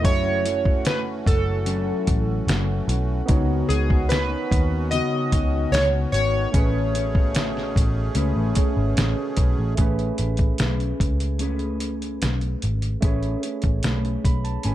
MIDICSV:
0, 0, Header, 1, 7, 480
1, 0, Start_track
1, 0, Tempo, 811140
1, 25, Time_signature, 4, 2, 24, 8
1, 8726, End_track
2, 0, Start_track
2, 0, Title_t, "Synth keys"
2, 0, Program_c, 0, 88
2, 28, Note_on_c, 0, 73, 111
2, 483, Note_off_c, 0, 73, 0
2, 514, Note_on_c, 0, 71, 91
2, 597, Note_off_c, 0, 71, 0
2, 752, Note_on_c, 0, 69, 88
2, 1685, Note_off_c, 0, 69, 0
2, 2181, Note_on_c, 0, 68, 86
2, 2420, Note_on_c, 0, 71, 96
2, 2430, Note_off_c, 0, 68, 0
2, 2879, Note_off_c, 0, 71, 0
2, 2905, Note_on_c, 0, 75, 103
2, 3386, Note_on_c, 0, 73, 109
2, 3399, Note_off_c, 0, 75, 0
2, 3469, Note_off_c, 0, 73, 0
2, 3623, Note_on_c, 0, 73, 87
2, 5279, Note_off_c, 0, 73, 0
2, 8726, End_track
3, 0, Start_track
3, 0, Title_t, "Tine electric piano"
3, 0, Program_c, 1, 4
3, 0, Control_c, 1, 64, 127
3, 6, Note_on_c, 1, 57, 65
3, 18, Note_on_c, 1, 64, 59
3, 26, Note_on_c, 1, 66, 57
3, 32, Control_c, 1, 64, 0
3, 38, Note_on_c, 1, 73, 74
3, 123, Control_c, 1, 64, 127
3, 1912, Note_off_c, 1, 57, 0
3, 1918, Note_off_c, 1, 64, 0
3, 1922, Note_off_c, 1, 66, 0
3, 1926, Note_on_c, 1, 59, 82
3, 1928, Note_off_c, 1, 73, 0
3, 1938, Note_on_c, 1, 63, 74
3, 1946, Note_on_c, 1, 66, 75
3, 1953, Control_c, 1, 64, 0
3, 1959, Note_on_c, 1, 73, 82
3, 2043, Control_c, 1, 64, 127
3, 3831, Note_off_c, 1, 59, 0
3, 3837, Note_off_c, 1, 63, 0
3, 3841, Note_off_c, 1, 66, 0
3, 3848, Note_off_c, 1, 73, 0
3, 3857, Note_on_c, 1, 57, 67
3, 3865, Note_on_c, 1, 61, 63
3, 3873, Control_c, 1, 64, 0
3, 3877, Note_on_c, 1, 68, 59
3, 3887, Note_on_c, 1, 71, 72
3, 3984, Control_c, 1, 64, 127
3, 5036, Note_off_c, 1, 57, 0
3, 5041, Note_off_c, 1, 61, 0
3, 5047, Note_off_c, 1, 68, 0
3, 5052, Note_off_c, 1, 71, 0
3, 5060, Note_on_c, 1, 57, 58
3, 5063, Note_on_c, 1, 61, 52
3, 5071, Note_on_c, 1, 68, 53
3, 5075, Note_on_c, 1, 73, 67
3, 5764, Note_off_c, 1, 57, 0
3, 5771, Note_on_c, 1, 57, 71
3, 5775, Note_off_c, 1, 61, 0
3, 5782, Note_off_c, 1, 68, 0
3, 5782, Note_on_c, 1, 61, 62
3, 5789, Note_off_c, 1, 73, 0
3, 5789, Note_on_c, 1, 68, 64
3, 5792, Control_c, 1, 64, 0
3, 5801, Note_on_c, 1, 71, 80
3, 5884, Control_c, 1, 64, 127
3, 7673, Note_off_c, 1, 57, 0
3, 7678, Note_off_c, 1, 61, 0
3, 7682, Note_off_c, 1, 68, 0
3, 7688, Note_off_c, 1, 71, 0
3, 7697, Note_on_c, 1, 57, 74
3, 7704, Note_on_c, 1, 61, 68
3, 7718, Note_on_c, 1, 68, 63
3, 7722, Note_on_c, 1, 73, 79
3, 8433, Note_on_c, 1, 83, 66
3, 8539, Note_off_c, 1, 83, 0
3, 8547, Note_on_c, 1, 81, 58
3, 8656, Note_off_c, 1, 81, 0
3, 8671, Note_on_c, 1, 80, 65
3, 8726, Note_off_c, 1, 57, 0
3, 8726, Note_off_c, 1, 61, 0
3, 8726, Note_off_c, 1, 68, 0
3, 8726, Note_off_c, 1, 73, 0
3, 8726, Note_off_c, 1, 80, 0
3, 8726, End_track
4, 0, Start_track
4, 0, Title_t, "Clean electric guitar"
4, 0, Program_c, 2, 27
4, 29, Note_on_c, 2, 54, 85
4, 34, Note_on_c, 2, 61, 80
4, 35, Note_on_c, 2, 64, 88
4, 39, Note_on_c, 2, 69, 97
4, 257, Note_off_c, 2, 69, 0
4, 264, Note_off_c, 2, 64, 0
4, 264, Note_on_c, 2, 69, 49
4, 267, Note_off_c, 2, 54, 0
4, 270, Note_off_c, 2, 61, 0
4, 271, Note_on_c, 2, 64, 45
4, 280, Note_on_c, 2, 61, 40
4, 983, Note_on_c, 2, 54, 88
4, 984, Note_off_c, 2, 61, 0
4, 984, Note_off_c, 2, 69, 0
4, 985, Note_off_c, 2, 64, 0
4, 986, Note_on_c, 2, 61, 87
4, 992, Note_on_c, 2, 64, 80
4, 995, Note_on_c, 2, 69, 92
4, 1698, Note_off_c, 2, 69, 0
4, 1705, Note_on_c, 2, 69, 52
4, 1709, Note_off_c, 2, 64, 0
4, 1715, Note_on_c, 2, 64, 50
4, 1718, Note_off_c, 2, 61, 0
4, 1720, Note_on_c, 2, 61, 47
4, 1732, Note_off_c, 2, 54, 0
4, 1945, Note_off_c, 2, 69, 0
4, 1947, Note_on_c, 2, 49, 101
4, 1950, Note_off_c, 2, 64, 0
4, 1952, Note_off_c, 2, 61, 0
4, 1955, Note_on_c, 2, 59, 106
4, 1958, Note_on_c, 2, 63, 103
4, 1960, Note_on_c, 2, 66, 116
4, 2182, Note_off_c, 2, 66, 0
4, 2186, Note_off_c, 2, 49, 0
4, 2189, Note_on_c, 2, 66, 49
4, 2190, Note_off_c, 2, 59, 0
4, 2192, Note_off_c, 2, 63, 0
4, 2200, Note_on_c, 2, 63, 47
4, 2207, Note_on_c, 2, 59, 40
4, 2907, Note_off_c, 2, 66, 0
4, 2908, Note_on_c, 2, 49, 83
4, 2909, Note_off_c, 2, 63, 0
4, 2914, Note_off_c, 2, 59, 0
4, 2916, Note_on_c, 2, 59, 83
4, 2917, Note_on_c, 2, 63, 88
4, 2924, Note_on_c, 2, 66, 94
4, 3621, Note_off_c, 2, 66, 0
4, 3626, Note_off_c, 2, 49, 0
4, 3628, Note_on_c, 2, 66, 49
4, 3630, Note_off_c, 2, 63, 0
4, 3638, Note_on_c, 2, 63, 47
4, 3643, Note_off_c, 2, 59, 0
4, 3645, Note_on_c, 2, 59, 39
4, 3864, Note_off_c, 2, 59, 0
4, 3866, Note_off_c, 2, 66, 0
4, 3866, Note_on_c, 2, 57, 89
4, 3868, Note_off_c, 2, 63, 0
4, 3871, Note_on_c, 2, 61, 91
4, 3876, Note_on_c, 2, 68, 88
4, 3876, Note_on_c, 2, 71, 86
4, 4103, Note_off_c, 2, 71, 0
4, 4105, Note_off_c, 2, 57, 0
4, 4107, Note_off_c, 2, 61, 0
4, 4109, Note_off_c, 2, 68, 0
4, 4110, Note_on_c, 2, 71, 48
4, 4116, Note_on_c, 2, 68, 43
4, 4125, Note_on_c, 2, 61, 43
4, 4824, Note_on_c, 2, 57, 95
4, 4827, Note_off_c, 2, 61, 0
4, 4830, Note_on_c, 2, 61, 95
4, 4832, Note_off_c, 2, 68, 0
4, 4834, Note_on_c, 2, 68, 89
4, 4835, Note_off_c, 2, 71, 0
4, 4837, Note_on_c, 2, 71, 99
4, 5546, Note_off_c, 2, 71, 0
4, 5549, Note_on_c, 2, 71, 51
4, 5551, Note_off_c, 2, 68, 0
4, 5554, Note_on_c, 2, 68, 47
4, 5561, Note_off_c, 2, 61, 0
4, 5563, Note_on_c, 2, 61, 43
4, 5566, Note_off_c, 2, 57, 0
4, 5780, Note_off_c, 2, 61, 0
4, 5783, Note_on_c, 2, 57, 80
4, 5786, Note_off_c, 2, 68, 0
4, 5786, Note_off_c, 2, 71, 0
4, 5787, Note_on_c, 2, 61, 92
4, 5793, Note_on_c, 2, 68, 95
4, 5795, Note_on_c, 2, 71, 97
4, 6019, Note_off_c, 2, 71, 0
4, 6023, Note_off_c, 2, 57, 0
4, 6025, Note_off_c, 2, 61, 0
4, 6026, Note_on_c, 2, 71, 57
4, 6028, Note_off_c, 2, 68, 0
4, 6037, Note_on_c, 2, 68, 44
4, 6040, Note_on_c, 2, 61, 41
4, 6265, Note_off_c, 2, 61, 0
4, 6265, Note_off_c, 2, 71, 0
4, 6268, Note_on_c, 2, 57, 65
4, 6270, Note_off_c, 2, 68, 0
4, 6272, Note_on_c, 2, 61, 68
4, 6279, Note_on_c, 2, 68, 69
4, 6283, Note_on_c, 2, 71, 73
4, 6736, Note_off_c, 2, 57, 0
4, 6739, Note_on_c, 2, 57, 79
4, 6742, Note_off_c, 2, 61, 0
4, 6749, Note_off_c, 2, 68, 0
4, 6749, Note_on_c, 2, 61, 90
4, 6756, Note_off_c, 2, 71, 0
4, 6756, Note_on_c, 2, 68, 93
4, 6767, Note_on_c, 2, 71, 87
4, 7702, Note_off_c, 2, 57, 0
4, 7704, Note_on_c, 2, 57, 94
4, 7706, Note_off_c, 2, 61, 0
4, 7707, Note_off_c, 2, 68, 0
4, 7713, Note_on_c, 2, 61, 90
4, 7714, Note_on_c, 2, 68, 94
4, 7715, Note_off_c, 2, 71, 0
4, 7718, Note_on_c, 2, 71, 99
4, 7943, Note_off_c, 2, 57, 0
4, 7943, Note_off_c, 2, 71, 0
4, 7948, Note_off_c, 2, 61, 0
4, 7948, Note_off_c, 2, 68, 0
4, 7950, Note_on_c, 2, 71, 53
4, 7961, Note_on_c, 2, 68, 50
4, 7968, Note_on_c, 2, 61, 45
4, 8186, Note_off_c, 2, 71, 0
4, 8189, Note_off_c, 2, 61, 0
4, 8190, Note_on_c, 2, 57, 64
4, 8192, Note_off_c, 2, 68, 0
4, 8196, Note_on_c, 2, 61, 59
4, 8200, Note_on_c, 2, 68, 66
4, 8206, Note_on_c, 2, 71, 61
4, 8661, Note_off_c, 2, 57, 0
4, 8663, Note_on_c, 2, 57, 88
4, 8664, Note_off_c, 2, 61, 0
4, 8671, Note_off_c, 2, 68, 0
4, 8671, Note_on_c, 2, 61, 87
4, 8679, Note_on_c, 2, 68, 78
4, 8681, Note_off_c, 2, 71, 0
4, 8686, Note_on_c, 2, 71, 88
4, 8726, Note_off_c, 2, 57, 0
4, 8726, Note_off_c, 2, 61, 0
4, 8726, Note_off_c, 2, 68, 0
4, 8726, Note_off_c, 2, 71, 0
4, 8726, End_track
5, 0, Start_track
5, 0, Title_t, "Accordion"
5, 0, Program_c, 3, 21
5, 0, Note_on_c, 3, 52, 74
5, 0, Note_on_c, 3, 57, 65
5, 0, Note_on_c, 3, 66, 73
5, 26, Note_on_c, 3, 61, 67
5, 1915, Note_off_c, 3, 57, 0
5, 1919, Note_off_c, 3, 52, 0
5, 1952, Note_on_c, 3, 51, 76
5, 1952, Note_on_c, 3, 59, 69
5, 3842, Note_off_c, 3, 66, 0
5, 3849, Note_off_c, 3, 51, 0
5, 3849, Note_off_c, 3, 59, 0
5, 3866, Note_on_c, 3, 47, 74
5, 3867, Note_on_c, 3, 57, 68
5, 3867, Note_on_c, 3, 68, 83
5, 5760, Note_off_c, 3, 61, 0
5, 5765, Note_off_c, 3, 47, 0
5, 5766, Note_off_c, 3, 57, 0
5, 5766, Note_off_c, 3, 68, 0
5, 8726, End_track
6, 0, Start_track
6, 0, Title_t, "Picked electric bass"
6, 0, Program_c, 4, 34
6, 26, Note_on_c, 4, 30, 99
6, 722, Note_off_c, 4, 30, 0
6, 749, Note_on_c, 4, 30, 94
6, 1132, Note_off_c, 4, 30, 0
6, 1228, Note_on_c, 4, 33, 91
6, 1419, Note_off_c, 4, 33, 0
6, 1462, Note_on_c, 4, 30, 94
6, 1655, Note_off_c, 4, 30, 0
6, 1703, Note_on_c, 4, 35, 89
6, 1896, Note_off_c, 4, 35, 0
6, 1949, Note_on_c, 4, 37, 109
6, 2140, Note_off_c, 4, 37, 0
6, 2184, Note_on_c, 4, 37, 98
6, 2568, Note_off_c, 4, 37, 0
6, 2674, Note_on_c, 4, 39, 90
6, 2958, Note_off_c, 4, 39, 0
6, 3152, Note_on_c, 4, 37, 92
6, 3341, Note_off_c, 4, 37, 0
6, 3384, Note_on_c, 4, 37, 96
6, 3576, Note_off_c, 4, 37, 0
6, 3625, Note_on_c, 4, 32, 86
6, 3817, Note_off_c, 4, 32, 0
6, 3871, Note_on_c, 4, 33, 101
6, 4564, Note_off_c, 4, 33, 0
6, 4594, Note_on_c, 4, 33, 83
6, 4782, Note_off_c, 4, 33, 0
6, 4824, Note_on_c, 4, 37, 91
6, 4920, Note_off_c, 4, 37, 0
6, 4948, Note_on_c, 4, 33, 74
6, 5043, Note_off_c, 4, 33, 0
6, 5188, Note_on_c, 4, 32, 83
6, 5282, Note_off_c, 4, 32, 0
6, 5310, Note_on_c, 4, 33, 88
6, 5403, Note_off_c, 4, 33, 0
6, 5549, Note_on_c, 4, 35, 88
6, 5643, Note_off_c, 4, 35, 0
6, 5672, Note_on_c, 4, 33, 80
6, 5765, Note_off_c, 4, 33, 0
6, 5789, Note_on_c, 4, 33, 96
6, 5979, Note_off_c, 4, 33, 0
6, 6032, Note_on_c, 4, 33, 90
6, 6220, Note_off_c, 4, 33, 0
6, 6274, Note_on_c, 4, 35, 90
6, 6462, Note_off_c, 4, 35, 0
6, 6513, Note_on_c, 4, 37, 90
6, 7204, Note_off_c, 4, 37, 0
6, 7235, Note_on_c, 4, 35, 86
6, 7422, Note_off_c, 4, 35, 0
6, 7477, Note_on_c, 4, 32, 93
6, 7663, Note_off_c, 4, 32, 0
6, 7710, Note_on_c, 4, 33, 96
6, 7899, Note_off_c, 4, 33, 0
6, 8070, Note_on_c, 4, 33, 87
6, 8163, Note_off_c, 4, 33, 0
6, 8190, Note_on_c, 4, 35, 92
6, 8379, Note_off_c, 4, 35, 0
6, 8432, Note_on_c, 4, 35, 75
6, 8620, Note_off_c, 4, 35, 0
6, 8671, Note_on_c, 4, 32, 84
6, 8726, Note_off_c, 4, 32, 0
6, 8726, End_track
7, 0, Start_track
7, 0, Title_t, "Drums"
7, 27, Note_on_c, 9, 36, 111
7, 28, Note_on_c, 9, 42, 97
7, 86, Note_off_c, 9, 36, 0
7, 87, Note_off_c, 9, 42, 0
7, 269, Note_on_c, 9, 42, 80
7, 328, Note_off_c, 9, 42, 0
7, 387, Note_on_c, 9, 36, 90
7, 446, Note_off_c, 9, 36, 0
7, 503, Note_on_c, 9, 42, 94
7, 512, Note_on_c, 9, 38, 112
7, 562, Note_off_c, 9, 42, 0
7, 571, Note_off_c, 9, 38, 0
7, 748, Note_on_c, 9, 36, 97
7, 754, Note_on_c, 9, 42, 80
7, 808, Note_off_c, 9, 36, 0
7, 813, Note_off_c, 9, 42, 0
7, 984, Note_on_c, 9, 42, 78
7, 1043, Note_off_c, 9, 42, 0
7, 1227, Note_on_c, 9, 42, 85
7, 1229, Note_on_c, 9, 36, 87
7, 1286, Note_off_c, 9, 42, 0
7, 1288, Note_off_c, 9, 36, 0
7, 1470, Note_on_c, 9, 42, 87
7, 1476, Note_on_c, 9, 38, 113
7, 1529, Note_off_c, 9, 42, 0
7, 1535, Note_off_c, 9, 38, 0
7, 1711, Note_on_c, 9, 42, 78
7, 1770, Note_off_c, 9, 42, 0
7, 1944, Note_on_c, 9, 42, 92
7, 1947, Note_on_c, 9, 36, 107
7, 2003, Note_off_c, 9, 42, 0
7, 2006, Note_off_c, 9, 36, 0
7, 2190, Note_on_c, 9, 42, 78
7, 2250, Note_off_c, 9, 42, 0
7, 2309, Note_on_c, 9, 36, 93
7, 2368, Note_off_c, 9, 36, 0
7, 2427, Note_on_c, 9, 42, 95
7, 2437, Note_on_c, 9, 38, 120
7, 2486, Note_off_c, 9, 42, 0
7, 2496, Note_off_c, 9, 38, 0
7, 2672, Note_on_c, 9, 36, 94
7, 2677, Note_on_c, 9, 42, 76
7, 2731, Note_off_c, 9, 36, 0
7, 2736, Note_off_c, 9, 42, 0
7, 2909, Note_on_c, 9, 42, 86
7, 2969, Note_off_c, 9, 42, 0
7, 3151, Note_on_c, 9, 42, 83
7, 3152, Note_on_c, 9, 36, 85
7, 3210, Note_off_c, 9, 42, 0
7, 3211, Note_off_c, 9, 36, 0
7, 3396, Note_on_c, 9, 42, 83
7, 3402, Note_on_c, 9, 38, 111
7, 3455, Note_off_c, 9, 42, 0
7, 3461, Note_off_c, 9, 38, 0
7, 3635, Note_on_c, 9, 42, 79
7, 3694, Note_off_c, 9, 42, 0
7, 3870, Note_on_c, 9, 42, 101
7, 3871, Note_on_c, 9, 36, 110
7, 3929, Note_off_c, 9, 42, 0
7, 3930, Note_off_c, 9, 36, 0
7, 4113, Note_on_c, 9, 42, 82
7, 4172, Note_off_c, 9, 42, 0
7, 4231, Note_on_c, 9, 36, 91
7, 4290, Note_off_c, 9, 36, 0
7, 4347, Note_on_c, 9, 42, 99
7, 4356, Note_on_c, 9, 38, 119
7, 4406, Note_off_c, 9, 42, 0
7, 4416, Note_off_c, 9, 38, 0
7, 4480, Note_on_c, 9, 38, 34
7, 4539, Note_off_c, 9, 38, 0
7, 4593, Note_on_c, 9, 36, 92
7, 4600, Note_on_c, 9, 42, 82
7, 4652, Note_off_c, 9, 36, 0
7, 4659, Note_off_c, 9, 42, 0
7, 4822, Note_on_c, 9, 42, 82
7, 4881, Note_off_c, 9, 42, 0
7, 5062, Note_on_c, 9, 42, 80
7, 5069, Note_on_c, 9, 36, 90
7, 5121, Note_off_c, 9, 42, 0
7, 5128, Note_off_c, 9, 36, 0
7, 5308, Note_on_c, 9, 42, 90
7, 5314, Note_on_c, 9, 38, 108
7, 5367, Note_off_c, 9, 42, 0
7, 5373, Note_off_c, 9, 38, 0
7, 5542, Note_on_c, 9, 42, 77
7, 5547, Note_on_c, 9, 36, 81
7, 5601, Note_off_c, 9, 42, 0
7, 5607, Note_off_c, 9, 36, 0
7, 5784, Note_on_c, 9, 42, 91
7, 5788, Note_on_c, 9, 36, 104
7, 5843, Note_off_c, 9, 42, 0
7, 5847, Note_off_c, 9, 36, 0
7, 5911, Note_on_c, 9, 42, 34
7, 5970, Note_off_c, 9, 42, 0
7, 6024, Note_on_c, 9, 42, 68
7, 6083, Note_off_c, 9, 42, 0
7, 6137, Note_on_c, 9, 42, 52
7, 6149, Note_on_c, 9, 36, 89
7, 6197, Note_off_c, 9, 42, 0
7, 6208, Note_off_c, 9, 36, 0
7, 6262, Note_on_c, 9, 42, 87
7, 6272, Note_on_c, 9, 38, 107
7, 6322, Note_off_c, 9, 42, 0
7, 6331, Note_off_c, 9, 38, 0
7, 6392, Note_on_c, 9, 42, 33
7, 6451, Note_off_c, 9, 42, 0
7, 6510, Note_on_c, 9, 36, 84
7, 6514, Note_on_c, 9, 42, 77
7, 6569, Note_off_c, 9, 36, 0
7, 6574, Note_off_c, 9, 42, 0
7, 6629, Note_on_c, 9, 42, 50
7, 6688, Note_off_c, 9, 42, 0
7, 6742, Note_on_c, 9, 42, 77
7, 6801, Note_off_c, 9, 42, 0
7, 6860, Note_on_c, 9, 42, 33
7, 6919, Note_off_c, 9, 42, 0
7, 6985, Note_on_c, 9, 42, 76
7, 7044, Note_off_c, 9, 42, 0
7, 7113, Note_on_c, 9, 42, 45
7, 7172, Note_off_c, 9, 42, 0
7, 7229, Note_on_c, 9, 42, 77
7, 7235, Note_on_c, 9, 38, 97
7, 7288, Note_off_c, 9, 42, 0
7, 7294, Note_off_c, 9, 38, 0
7, 7346, Note_on_c, 9, 42, 34
7, 7405, Note_off_c, 9, 42, 0
7, 7469, Note_on_c, 9, 42, 69
7, 7529, Note_off_c, 9, 42, 0
7, 7588, Note_on_c, 9, 42, 47
7, 7647, Note_off_c, 9, 42, 0
7, 7706, Note_on_c, 9, 42, 88
7, 7707, Note_on_c, 9, 36, 108
7, 7766, Note_off_c, 9, 42, 0
7, 7767, Note_off_c, 9, 36, 0
7, 7827, Note_on_c, 9, 42, 35
7, 7886, Note_off_c, 9, 42, 0
7, 7948, Note_on_c, 9, 42, 76
7, 8007, Note_off_c, 9, 42, 0
7, 8058, Note_on_c, 9, 42, 48
7, 8070, Note_on_c, 9, 36, 83
7, 8118, Note_off_c, 9, 42, 0
7, 8129, Note_off_c, 9, 36, 0
7, 8183, Note_on_c, 9, 42, 90
7, 8192, Note_on_c, 9, 38, 103
7, 8242, Note_off_c, 9, 42, 0
7, 8251, Note_off_c, 9, 38, 0
7, 8313, Note_on_c, 9, 42, 32
7, 8372, Note_off_c, 9, 42, 0
7, 8430, Note_on_c, 9, 36, 89
7, 8433, Note_on_c, 9, 42, 70
7, 8489, Note_off_c, 9, 36, 0
7, 8492, Note_off_c, 9, 42, 0
7, 8549, Note_on_c, 9, 42, 43
7, 8608, Note_off_c, 9, 42, 0
7, 8660, Note_on_c, 9, 42, 77
7, 8719, Note_off_c, 9, 42, 0
7, 8726, End_track
0, 0, End_of_file